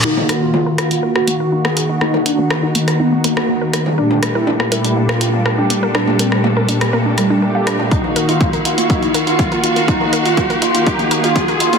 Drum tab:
HH |--x---xx--x---x-|--x---xx--x---x-|--x---xx--x---x-|--x---xx--x---x-|
SD |--r---r--r---r--|r---r--r---r--r-|--r--r---r--r---|r--r---r--r---r-|
T2 |-o--o-----------|-o--o----------o|-o--o-----------|-o--o----------o|
BD |----------------|----------------|----------------|----------------|

HH |x-xxxxxxxxxxxxxx|x-xxxxxxxxxxxxxx|
SD |----------------|----------------|
T2 |-o--o-----------|-o--o----------o|
BD |o---o---o---o---|o---o---o---o---|